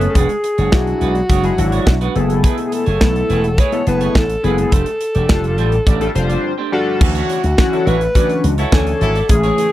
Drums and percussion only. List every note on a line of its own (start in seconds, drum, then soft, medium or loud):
0.01 closed hi-hat medium
0.15 kick loud
0.15 closed hi-hat loud
0.29 closed hi-hat medium
0.44 closed hi-hat medium
0.58 closed hi-hat medium
0.72 kick loud
0.72 snare loud
0.87 closed hi-hat soft
1.01 closed hi-hat medium
1.15 closed hi-hat soft
1.29 kick loud
1.29 closed hi-hat medium
1.44 closed hi-hat medium
1.58 closed hi-hat medium
1.72 closed hi-hat medium
1.87 kick loud
1.87 snare loud
2.01 closed hi-hat medium
2.16 closed hi-hat medium
2.30 closed hi-hat medium
2.44 kick loud
2.44 closed hi-hat loud
2.58 closed hi-hat medium
2.72 closed hi-hat medium
2.86 closed hi-hat medium
3.01 kick loud
3.01 snare loud
3.16 closed hi-hat soft
3.30 closed hi-hat medium
3.44 closed hi-hat soft
3.58 kick loud
3.58 closed hi-hat medium
3.72 closed hi-hat medium
3.87 closed hi-hat medium
4.01 closed hi-hat medium
4.15 kick loud
4.15 snare loud
4.29 closed hi-hat medium
4.44 closed hi-hat medium
4.58 closed hi-hat medium
4.72 kick loud
4.72 closed hi-hat loud
4.86 closed hi-hat medium
5.01 closed hi-hat medium
5.15 closed hi-hat medium
5.29 kick loud
5.29 snare loud
5.44 closed hi-hat soft
5.58 closed hi-hat medium
5.72 closed hi-hat soft
5.87 kick loud
5.87 closed hi-hat medium
6.01 closed hi-hat medium
6.16 closed hi-hat loud
6.30 closed hi-hat medium
7.01 kick loud
7.01 crash loud
7.15 closed hi-hat medium
7.29 closed hi-hat medium
7.44 closed hi-hat medium
7.58 kick loud
7.58 snare medium
7.73 closed hi-hat soft
7.87 closed hi-hat medium
8.01 closed hi-hat soft
8.15 kick loud
8.15 closed hi-hat medium
8.29 closed hi-hat medium
8.44 closed hi-hat loud
8.58 closed hi-hat medium
8.72 kick loud
8.72 snare loud
8.87 closed hi-hat medium
9.01 closed hi-hat medium
9.15 closed hi-hat medium
9.29 kick loud
9.29 closed hi-hat loud
9.43 closed hi-hat medium
9.58 closed hi-hat medium